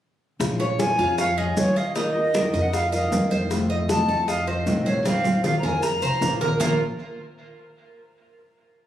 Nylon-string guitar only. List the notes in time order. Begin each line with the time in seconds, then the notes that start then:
0.40 F3 G#3 C#4 F4
0.59 G#3 C#4 F4
0.79 F3 G#3 C#4 F4
0.98 G#3 C#4 F4
1.18 muted nylon-string guitar stroke
1.37 G#3 C#4 F4
1.57 F3 G#3 C#4 F4
1.95 D#3 A#3 D#4 F4 A#4
2.15 D#4 F4 A#4
2.34 D#3 A#3 D#4 F4 A#4
2.54 D#4 F4 A#4
2.73 muted nylon-string guitar stroke
2.92 D#4 F4 A#4
3.11 D#3 A#3 D#4 F4 A#4
3.49 C3 D#3 A3 C4 F4
3.69 A3 C4 F4
3.89 C3 D#3 A3 C4 F4
4.08 A3 C4 F4
4.28 muted nylon-string guitar stroke
4.47 A3 C4 F4
4.66 C3 D#3 A3 C4 F4
5.05 F3 A#3 C#4 F4 C5
5.24 C#4 F4 C5
5.44 F3 A#3 C#4 F4 C5
5.63 C#4 F4 C5
5.82 muted nylon-string guitar stroke
6.01 C#4 F4 C5
6.21 F3 A#3 C#4 F4 C5
6.60 A#2 F3 A#3 C#4 F4 C5